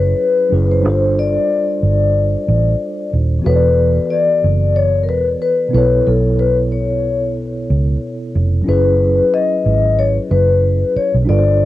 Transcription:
0.00 0.13 F#1 medium
0.00 0.45 F#3 medium
0.00 0.46 C#4 soft
0.00 0.47 E4 medium
0.00 0.49 G#4 soft
0.00 0.50 B4 medium
0.00 0.73 B4 medium
0.00 0.85 C#5 medium
0.49 0.85 F#1 medium
0.49 0.83 F#3 soft
0.49 0.83 C#4 soft
0.49 0.84 E4 soft
0.49 0.84 G#4 soft
0.54 0.85 B4 medium
0.72 1.19 C5 medium
0.80 3.38 G3 soft
0.80 3.39 D4 medium
0.85 1.37 G1 loud
0.85 3.41 F4 soft
0.85 3.42 A4 soft
0.89 3.43 C5 medium
1.19 3.09 D5 medium
1.83 2.35 G1 medium
2.48 2.74 A1 medium
3.13 3.39 D#1 medium
3.39 5.66 E3 medium
3.39 5.67 B3 soft
3.44 3.98 E1 loud
3.44 5.68 F#4 soft
3.44 5.70 A4 medium
3.44 4.12 B4 medium
3.49 3.54 C#5 soft
3.56 5.74 D5 medium
4.10 4.77 D5 medium
4.44 5.09 F#1 medium
4.76 5.02 C#5 medium
5.03 5.08 A#4 medium
5.09 5.35 E1 medium
5.09 5.23 B4 medium
5.42 5.71 B4 medium
5.68 8.27 B2 medium
5.68 8.28 B3 medium
5.73 6.00 B1 medium
5.73 8.30 E4 medium
5.73 8.31 A4 medium
5.73 6.07 B4 medium
5.78 8.32 C#5 medium
6.07 7.65 B1 medium
6.07 6.40 A4 medium
6.39 6.54 B4 medium
6.72 7.32 C#5 medium
7.70 7.96 C#2 medium
8.35 8.61 F1 medium
8.62 11.21 F#3 medium
8.62 11.22 C#4 medium
8.67 9.20 F#1 medium
8.67 11.23 E4 medium
8.67 11.24 G#4 medium
8.67 9.34 B4 medium
8.72 11.26 B4 medium
9.34 10.00 D#5 medium
9.66 10.17 G#1 medium
9.99 10.13 C#5 loud
10.31 10.83 F#1 medium
10.31 10.91 B4 medium
10.96 11.11 C#5 medium
10.96 muted fingered electric bass stroke soft
11.14 11.25 B1 medium
11.22 11.65 G3 medium
11.22 11.65 D4 medium
11.27 11.65 G1 loud
11.27 11.65 F4 medium
11.27 11.65 A4 soft
11.27 11.65 D5 medium
11.32 11.36 B4 medium
11.39 11.65 C5 medium

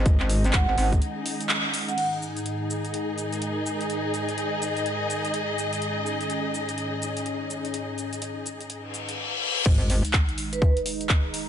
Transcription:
0.00 0.18 G#1 loud
0.00 1.94 D#3 medium
0.00 1.94 G#3 medium
0.00 1.94 C#4 loud
0.00 1.97 D#4 medium
0.00 1.98 G#4 medium
0.00 1.98 D#5 medium
0.06 kick loud
0.06 closed hi-hat medium
0.06 shaker soft
0.20 0.66 G#1 loud
0.20 clap soft
0.30 open hi-hat medium
0.30 shaker medium
0.44 closed hi-hat medium
0.44 shaker soft
0.53 0.63 F#5 medium
0.53 kick loud
0.53 clap loud
0.53 closed hi-hat medium
0.53 shaker soft
0.69 0.76 G#1 loud
0.69 0.74 F#5 medium
0.78 1.00 G#1 medium
0.78 open hi-hat medium
0.78 shaker medium
0.92 kick medium
0.92 closed hi-hat medium
0.92 shaker soft
1.02 closed hi-hat medium
1.02 shaker soft
1.26 open hi-hat loud
1.26 shaker medium
1.41 closed hi-hat medium
1.41 shaker soft
1.49 clap loud
1.49 closed hi-hat medium
1.49 shaker soft
1.74 open hi-hat medium
1.74 shaker medium
1.89 1.98 F#5 medium
1.89 closed hi-hat medium
1.89 shaker soft
1.98 9.14 G#2 medium
1.98 9.14 D#3 medium
1.98 5.78 D#4 medium
1.98 9.18 D#4 medium
1.98 9.14 G#4 medium
1.98 closed hi-hat medium
1.98 crash medium
1.98 shaker soft
2.13 9.18 G#4 medium
2.22 shaker medium
2.37 closed hi-hat soft
2.37 shaker soft
2.46 closed hi-hat medium
2.46 shaker soft
2.65 9.18 D#5 medium
2.70 shaker medium
2.85 closed hi-hat soft
2.85 shaker soft
2.94 closed hi-hat medium
2.94 shaker soft
3.18 closed hi-hat soft
3.18 shaker medium
3.33 closed hi-hat soft
3.33 shaker soft
3.42 closed hi-hat medium
3.42 shaker soft
3.66 shaker medium
3.81 closed hi-hat medium
3.81 shaker soft
3.90 closed hi-hat medium
3.90 shaker soft
4.14 closed hi-hat soft
4.14 shaker medium
4.29 closed hi-hat soft
4.29 shaker soft
4.38 closed hi-hat medium
4.38 shaker soft
4.62 closed hi-hat soft
4.62 shaker medium
4.77 closed hi-hat soft
4.77 shaker soft
4.86 closed hi-hat medium
4.86 shaker soft
5.10 closed hi-hat soft
5.10 shaker medium
5.25 closed hi-hat medium
5.25 shaker soft
5.34 closed hi-hat medium
5.34 shaker soft
5.58 shaker medium
5.73 closed hi-hat medium
5.73 shaker soft
5.82 9.15 C#4 medium
5.82 closed hi-hat medium
5.82 shaker soft
6.06 shaker medium
6.21 closed hi-hat soft
6.21 shaker soft
6.30 closed hi-hat medium
6.30 shaker soft
6.54 shaker medium
6.69 closed hi-hat soft
6.69 shaker soft
6.78 closed hi-hat medium
6.78 shaker soft
7.02 closed hi-hat soft
7.02 shaker medium
7.17 closed hi-hat soft
7.17 shaker soft
7.26 closed hi-hat medium
7.26 shaker soft
7.50 shaker medium
7.65 closed hi-hat soft
7.65 shaker soft
7.74 closed hi-hat medium
7.74 shaker soft
7.98 closed hi-hat soft
7.98 shaker medium
8.13 closed hi-hat soft
8.13 shaker soft
8.22 closed hi-hat medium
8.22 shaker soft
8.46 closed hi-hat soft
8.46 shaker medium
8.61 closed hi-hat soft
8.61 shaker soft
8.70 closed hi-hat medium
8.70 reverse cymbal medium
8.70 shaker soft
8.94 closed hi-hat soft
8.94 shaker medium
9.09 closed hi-hat soft
9.09 shaker soft
9.66 10.02 G#1 loud
9.66 11.49 D#3 medium
9.66 11.49 G#3 medium
9.66 11.49 D#4 medium
9.66 kick loud
9.66 crash loud
9.66 sub drop medium
9.66 shaker soft
9.81 closed hi-hat soft
9.90 open hi-hat loud
9.90 shaker medium
10.05 closed hi-hat medium
10.05 shaker soft
10.13 kick loud
10.13 clap loud
10.13 shaker soft
10.29 closed hi-hat medium
10.38 open hi-hat medium
10.38 shaker medium
10.53 10.59 B4 medium
10.53 closed hi-hat medium
10.53 shaker soft
10.62 10.71 B4 medium
10.62 kick loud
10.62 shaker soft
10.77 closed hi-hat medium
10.86 open hi-hat loud
10.86 shaker medium
11.01 closed hi-hat medium
11.01 shaker soft
11.09 kick loud
11.09 clap loud
11.09 shaker soft
11.34 open hi-hat loud
11.34 shaker medium

